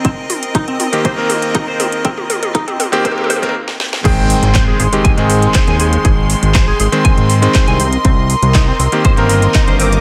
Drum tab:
CC |--------------------------------|--------------------------------|x-------------------------------|--------------------------------|
HH |x---o-x-x-x-o-x-x---o-x-x---o-x-|x---o-x-x-x-o-x-x---o-x---------|x---o-x-x---o-x-x-x-o-x-x-x-o-x-|x---o-x-x---o-x-x-x-o-x-x-x-o-x-|
CP |--------------------------------|--------------------------------|--------x---------------x-------|--------x---------------x-------|
SD |--------------------------------|--------------------------o-o-o-|--------------------------------|--------------------------------|
T2 |o---o---o---o---o---o---o---o---|o-o-o-o-o-o-o-o-oooooooo--------|--------------------------------|--------------------------------|
BD |o-------o-------o-------o-------|o-------o-------o-----o---------|o-------o-------o-------o-------|o-------o-------o-------o-------|

CC |--------------------------------|
HH |x---o-x-x---o-x-x-x-o-x-x-x-o-x-|
CP |--------x---------------x-------|
SD |--------------------------------|
T2 |--------------------------------|
BD |o-------o-------o-------o-------|